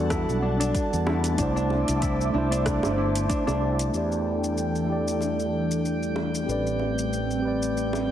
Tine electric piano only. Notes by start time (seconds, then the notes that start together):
Already playing: G3 D4 F#4 A4
1.35 A3 D4
1.40 E4 C5
2.30 A3 D4
2.35 E4 C5
3.90 A3 E4
3.95 G4 D5
4.84 A3 E4
4.90 G4 D5
6.44 C4 G4
6.49 B4 D5
7.40 C4 G4
7.45 B4 D5